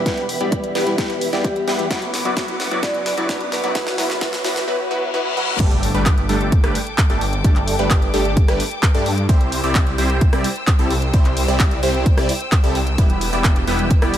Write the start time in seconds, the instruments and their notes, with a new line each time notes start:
Already playing: string section G4 E5 B5, riser
0.05 detuned saw bass E1, steel-string acoustic guitar G3 B3 E4 G4, supersaw synth G3 B3 E4 G4 B4, vibraphone B4, kick, snare, closed hi-hat
0.18 closed hi-hat
0.29 open hi-hat
0.40 detuned saw bass E1, steel-string acoustic guitar G3 B3 E4 G4, supersaw synth G3 B3 E4 G4 D5, closed hi-hat
0.52 kick, closed hi-hat
0.64 closed hi-hat
0.75 detuned saw bass E1, supersaw synth G3 B3 E4 G4 B4, snare, open hi-hat
0.86 steel-string acoustic guitar G3 B3 E4 G4, closed hi-hat
0.98 detuned saw bass E1, steel-string acoustic guitar G3 B3 E4 G4, supersaw synth G3 B3 E4 G4 B4, kick, snare, closed hi-hat
1.10 closed hi-hat
1.21 open hi-hat
1.32 detuned saw bass E2, steel-string acoustic guitar G3 B3 E4 G4, supersaw synth G3 B3 E4 G4 D5, snare, closed hi-hat
1.44 vibraphone G4, kick, closed hi-hat
1.56 vibraphone G4, closed hi-hat
1.67 detuned saw bass E2, supersaw synth G3 B3 E4 G4 B4, snare, open hi-hat
1.79 steel-string acoustic guitar G3 B3 E4 G4, closed hi-hat
1.90 detuned saw bass F#1, steel-string acoustic guitar F#3 B3 E4 F#4, supersaw synth F#3 B3 E4 F#4 B4, string section B4 F#5 D6, kick, snare, closed hi-hat
2.02 closed hi-hat
2.14 snare, open hi-hat
2.25 detuned saw bass F#1, steel-string acoustic guitar F#3 B3 E4 F#4, supersaw synth F#3 B3 E4 F#4 D5, closed hi-hat
2.36 detuned saw bass F#1, steel-string acoustic guitar F#3 B3 E4 F#4, supersaw synth B3 E4 F#4 B4, kick, snare, closed hi-hat
2.48 closed hi-hat
2.60 snare, open hi-hat
2.71 detuned saw bass F#1, steel-string acoustic guitar F#3 B3 E4 F#4, supersaw synth F#3 B3 E4 F#4 D5, closed hi-hat
2.82 detuned saw bass F#1, steel-string acoustic guitar F#3 B3 E4 F#4, supersaw synth B3 E4 B4, vibraphone D5, kick, snare, closed hi-hat
2.94 closed hi-hat
3.06 snare, open hi-hat
3.17 detuned saw bass F#1, steel-string acoustic guitar F#3 B3 E4 F#4, supersaw synth F#3 B3 E4 F#4 D5, closed hi-hat
3.28 detuned saw bass F#1, steel-string acoustic guitar F#3 B3 E4 F#4, supersaw synth B3 B4, kick, snare, closed hi-hat
3.41 closed hi-hat
3.52 vibraphone B4, snare, open hi-hat
3.63 detuned saw bass F#1, steel-string acoustic guitar F#3 B3 E4 F#4, supersaw synth F#3 B3 E4 F#4 D5, vibraphone B4, closed hi-hat
3.75 detuned saw bass F#1, steel-string acoustic guitar F#3 B3 E4 F#4, supersaw synth F#3 B3 E4 F#4 B4, string section E5, kick, snare, closed hi-hat
3.87 vibraphone F#4, snare, closed hi-hat
3.98 detuned saw bass F#1, steel-string acoustic guitar F#3 B3 E4 F#4, supersaw synth F#3 B3 E4 F#4 B4, vibraphone F#4, snare, open hi-hat
4.10 snare
4.21 detuned saw bass F#1, steel-string acoustic guitar F#3 B3 E4 F#4, supersaw synth F#3 B3 E4 F#4 B4, kick, snare, closed hi-hat
4.33 snare, closed hi-hat
4.44 detuned saw bass F#1, steel-string acoustic guitar F#3 B3 E4 F#4, supersaw synth F#3 B3 E4 F#4 B4, snare, open hi-hat
4.56 snare, closed hi-hat
4.68 supersaw synth F#3 B3 E4 F#4 B4, reverse cymbal
4.91 supersaw synth F#3 B3 E4 F#4 B4
5.14 supersaw synth F#3 B3 E4 F#4 B4
5.37 supersaw synth F#3 B3 E4 F#4 B4, mid tom
5.60 detuned saw bass G1, supersaw synth G3 A3 D4 G4 A4, string section A4 G5 D6, kick, closed hi-hat, crash, impact
5.71 closed hi-hat
5.83 open hi-hat
5.95 detuned saw bass G1, supersaw synth G3 A3 D4 G4 B4, closed hi-hat
6.06 kick, clap, closed hi-hat
6.18 closed hi-hat
6.29 detuned saw bass G1, supersaw synth G3 A3 D4 G4 A4, open hi-hat
6.41 closed hi-hat
6.52 kick, closed hi-hat
6.64 detuned saw bass G1, supersaw synth G3 A3 D4 G4 B4, cross-stick, closed hi-hat
6.75 open hi-hat
6.87 closed hi-hat
6.98 kick, clap, closed hi-hat
7.10 detuned saw bass G1, supersaw synth G3 A3 D4 G4 A4, closed hi-hat
7.21 open hi-hat
7.33 closed hi-hat
7.44 detuned saw bass G1, supersaw synth G3 A3 D4 G4 A4, kick, closed hi-hat
7.56 clap, closed hi-hat
7.68 open hi-hat
7.79 detuned saw bass G1, supersaw synth G3 A3 D4 G4 B4
7.90 kick, clap, closed hi-hat
8.02 closed hi-hat
8.14 detuned saw bass G1, supersaw synth G3 A3 D4 G4 A4, open hi-hat
8.25 closed hi-hat
8.37 kick, closed hi-hat
8.48 detuned saw bass G1, supersaw synth G3 A3 D4 G4 B4, cross-stick, closed hi-hat
8.60 open hi-hat
8.71 closed hi-hat
8.83 kick, clap, closed hi-hat
8.95 detuned saw bass G2, supersaw synth G3 A3 D4 G4 A4, closed hi-hat
9.06 open hi-hat
9.18 closed hi-hat
9.29 detuned saw bass C2, supersaw synth G3 C4 E4 G4 C5, string section C5 G5 E6, kick, closed hi-hat
9.41 closed hi-hat
9.52 open hi-hat
9.64 detuned saw bass C2, supersaw synth G3 C4 E4 G4 D5, closed hi-hat
9.75 kick, clap, closed hi-hat
9.87 closed hi-hat
9.98 detuned saw bass C2, supersaw synth G3 C4 E4 G4 C5, open hi-hat
10.10 closed hi-hat
10.21 kick, closed hi-hat
10.33 detuned saw bass C2, supersaw synth G3 C4 E4 G4 D5, cross-stick, closed hi-hat
10.44 open hi-hat
10.56 closed hi-hat
10.67 kick, clap, closed hi-hat
10.79 detuned saw bass C2, supersaw synth G3 C4 E4 G4 A4, closed hi-hat
10.90 open hi-hat
11.02 closed hi-hat
11.14 detuned saw bass C2, supersaw synth G3 C4 E4 G4 C5, kick, closed hi-hat
11.25 clap, closed hi-hat
11.37 open hi-hat
11.48 detuned saw bass C2, supersaw synth G3 C4 E4 G4 D5
11.60 kick, clap, closed hi-hat
11.71 closed hi-hat
11.83 detuned saw bass C2, supersaw synth G3 C4 E4 G4 C5, open hi-hat
11.94 closed hi-hat
12.06 kick, closed hi-hat
12.18 detuned saw bass C2, supersaw synth G3 C4 E4 G4 D5, cross-stick, closed hi-hat
12.29 open hi-hat
12.41 closed hi-hat
12.52 kick, clap, closed hi-hat
12.64 detuned saw bass C2, supersaw synth G3 C4 E4 G4 A4, closed hi-hat
12.75 open hi-hat
12.87 closed hi-hat
12.98 detuned saw bass E1, supersaw synth G3 B3 E4 G4 B4, string section B4, kick, closed hi-hat
13.10 closed hi-hat
13.21 open hi-hat
13.33 detuned saw bass E1, supersaw synth G3 B3 E4 G4 D5, closed hi-hat
13.44 kick, clap, closed hi-hat
13.56 closed hi-hat
13.67 detuned saw bass E1, supersaw synth G3 B3 E4 G4 B4, open hi-hat
13.79 closed hi-hat
13.91 kick, closed hi-hat
14.02 detuned saw bass E1, supersaw synth G3 B3 E4 G4 D5, cross-stick, closed hi-hat
14.14 open hi-hat